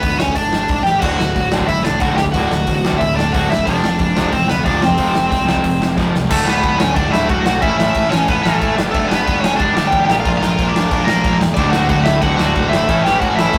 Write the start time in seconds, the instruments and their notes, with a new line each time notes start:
Already playing: overdriven electric guitar B3 B4
0.03 picked electric bass D2, kick, open hi-hat
0.19 overdriven electric guitar C#4 C#5, snare
0.28 kick
0.35 picked electric bass G1, overdriven electric guitar D4 D5, kick, open hi-hat
0.53 snare
0.68 picked electric bass C2, kick, open hi-hat
0.83 picked electric bass A1, overdriven electric guitar G4 G5, snare
1.00 picked electric bass D1, distorted electric guitar D2 A2 D3, overdriven electric guitar F#4 F#5, kick, crash
1.19 picked electric bass D1, distorted electric guitar D2 A2, snare
1.35 picked electric bass D1, distorted electric guitar D2 A2, kick, open hi-hat
1.52 picked electric bass A1, distorted electric guitar D2 A2 D3, snare
1.60 kick
1.67 picked electric bass F#1, distorted electric guitar D2 A2, overdriven electric guitar E4 E5, kick, open hi-hat
1.84 picked electric bass B1, distorted electric guitar D2 A2, overdriven electric guitar D4 D5, snare
2.00 picked electric bass B1, distorted electric guitar D2 A2 D3, overdriven electric guitar F#4 F#5, kick, open hi-hat
2.16 picked electric bass D1, distorted electric guitar D2 A2, overdriven electric guitar G4 G5, snare
2.26 kick
2.32 picked electric bass D1, distorted electric guitar D2, overdriven electric guitar F#4 F#5, kick, open hi-hat
2.36 distorted electric guitar A2 D3
2.50 picked electric bass D1, distorted electric guitar D2 A2, snare
2.67 picked electric bass A1, distorted electric guitar D2 A2, kick, open hi-hat
2.85 distorted electric guitar D2 A2 D3, snare
2.93 kick
2.98 picked electric bass D1, distorted electric guitar D2 A2, overdriven electric guitar E4 E5, kick, open hi-hat
3.15 distorted electric guitar D2 A2, overdriven electric guitar D4 D5, snare
3.32 picked electric bass D1, distorted electric guitar D2 A2 D3, overdriven electric guitar F#4 F#5, kick, open hi-hat
3.50 picked electric bass G1, distorted electric guitar D2 A2, overdriven electric guitar E4 E5, snare
3.59 kick
3.66 picked electric bass F1, distorted electric guitar F2 C3 F3, overdriven electric guitar D4 D5, kick, open hi-hat
3.83 picked electric bass F1, distorted electric guitar F2 C3, snare
3.99 picked electric bass F1, distorted electric guitar F2 C3, kick, open hi-hat
4.16 picked electric bass C2, distorted electric guitar F2 C3 F3, snare
4.24 kick
4.32 picked electric bass A1, distorted electric guitar F2 C3, overdriven electric guitar C4 C5, kick, open hi-hat
4.47 picked electric bass D2, distorted electric guitar F2 C3, overdriven electric guitar B3 B4, snare
4.64 picked electric bass D2, distorted electric guitar F2 C3 F3, overdriven electric guitar D4 D5, kick, open hi-hat
4.82 picked electric bass F1, distorted electric guitar F2 C3, overdriven electric guitar C4 C5, snare
4.90 kick
4.97 picked electric bass F1, distorted electric guitar F2 C3 F3, kick, open hi-hat
5.13 picked electric bass F1, distorted electric guitar F2 C3, snare
5.30 picked electric bass C2, distorted electric guitar F2 C3, kick, open hi-hat
5.46 distorted electric guitar F2 C3 F3, snare
5.56 kick
5.63 picked electric bass F1, distorted electric guitar F2 C3, kick, open hi-hat
5.81 distorted electric guitar F2 C3, snare
5.96 picked electric bass F1, distorted electric guitar F2 C3 F3, kick, snare
6.13 picked electric bass C2, distorted electric guitar F2 C3, snare
6.28 picked electric bass D1, distorted electric guitar D2 A2 D3 A3 F#4, overdriven electric guitar A4, kick, crash
6.32 overdriven electric guitar A3
6.45 picked electric bass D1, overdriven electric guitar B3 B4, snare
6.63 picked electric bass D1, kick, crash
6.79 picked electric bass D1, overdriven electric guitar C#4 C#5, snare
6.95 picked electric bass D1, overdriven electric guitar D4 D5, kick, crash
7.11 picked electric bass D1, distorted electric guitar D2 A2 D3 A3 F#4, overdriven electric guitar E4 E5, snare
7.28 picked electric bass D1, distorted electric guitar D2 A2 D3 A3 F#4, overdriven electric guitar F#4 F#5, kick, crash
7.46 picked electric bass B1, overdriven electric guitar F#4 F#5, snare
7.61 picked electric bass A1, distorted electric guitar A2 E3 A3 C#4 E4 A4, overdriven electric guitar E4 E5, kick, crash
7.78 picked electric bass A1, overdriven electric guitar E4 E5, snare
7.95 picked electric bass A1, kick, crash
8.10 picked electric bass A1, overdriven electric guitar C#4 C#5, snare
8.28 picked electric bass A1, overdriven electric guitar B3 B4, kick, crash
8.43 picked electric bass A1, distorted electric guitar A2 E3 A3 C#4 E4 A4, overdriven electric guitar A3 A4, snare
8.59 picked electric bass A1, distorted electric guitar A2 E3 A3 C#4 E4 A4, kick, crash
8.74 distorted electric guitar G2 D3 G3 B3 D4 G4
8.78 picked electric bass G1, distorted electric guitar G3, snare
8.91 picked electric bass G1, overdriven electric guitar A3 A4, kick, crash
9.08 picked electric bass G1, overdriven electric guitar B3 B4, snare
9.27 picked electric bass G1, kick, crash
9.40 overdriven electric guitar C#5, snare
9.44 picked electric bass G1, overdriven electric guitar C#4
9.56 picked electric bass G1, distorted electric guitar G2 D3 G3, overdriven electric guitar D4 D5, kick, crash
9.61 distorted electric guitar B3 D4 G4
9.75 picked electric bass G1, distorted electric guitar G2 D3 G3 B3 D4 G4, snare
9.87 overdriven electric guitar G4 G5
9.92 picked electric bass A1, kick, crash
10.05 distorted electric guitar A#2 F3 A#3 D4, overdriven electric guitar G4 G5
10.09 picked electric bass A#1, distorted electric guitar F4 A#4, snare
10.20 overdriven electric guitar F5
10.25 picked electric bass A#1, overdriven electric guitar F4, kick, crash
10.37 picked electric bass A#1, overdriven electric guitar F5
10.42 overdriven electric guitar F4, snare
10.59 picked electric bass A#1, kick, crash
10.69 overdriven electric guitar D5
10.73 picked electric bass A#1, overdriven electric guitar D4, snare
10.90 picked electric bass A#1, distorted electric guitar A#2 F3 A#3 D4 F4 A#4, kick, crash
11.04 picked electric bass A#1, distorted electric guitar D4 F4 A#4, overdriven electric guitar A#4, snare
11.09 distorted electric guitar A#2 F3 A#3, overdriven electric guitar A#3
11.23 picked electric bass A#1, kick, crash
11.40 picked electric bass E2, snare
11.54 picked electric bass D1, distorted electric guitar D2 A2 D3, overdriven electric guitar D5, kick, crash
11.58 distorted electric guitar A3 F#4, overdriven electric guitar D4
11.71 picked electric bass D1, overdriven electric guitar F#5, snare
11.75 overdriven electric guitar F#4
11.89 picked electric bass D1, kick, crash
12.04 picked electric bass D1, overdriven electric guitar E5, snare
12.08 overdriven electric guitar E4
12.21 picked electric bass D1, distorted electric guitar D2 A2 D3, overdriven electric guitar F#5, kick, crash
12.25 overdriven electric guitar F#4
12.36 picked electric bass D1, distorted electric guitar D3 A3 F#4, overdriven electric guitar F#4 F#5, snare
12.41 distorted electric guitar D2 A2
12.54 picked electric bass D1, distorted electric guitar D2 A2 D3 A3 F#4, kick, crash
12.69 overdriven electric guitar E5
12.73 picked electric bass G1, overdriven electric guitar E4, snare
12.87 picked electric bass A1, distorted electric guitar A2 E3 A3 C#4 E4 A4, kick, crash
13.03 overdriven electric guitar G4 G5, snare
13.08 picked electric bass A1
13.20 picked electric bass A1, overdriven electric guitar F#5, kick, crash
13.24 overdriven electric guitar F#4
13.35 picked electric bass A1, overdriven electric guitar E4 E5, snare
13.52 picked electric bass A1, distorted electric guitar A2 E3 A3, kick, crash